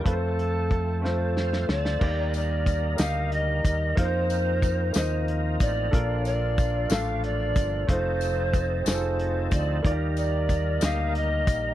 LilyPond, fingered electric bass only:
\new Staff \with { instrumentName = "Fingered electric bass" } { \clef bass \time 6/8 \key f \mixolydian \tempo 4. = 61 f,2~ f,8 d,8 | ees,4. d,4 ees,8 | f,4. ees,4 a,,8 | bes,,4. a,,4 g,,8 |
f,,4. f,,4 d,8 | ees,4. d,4 bes,,8 | }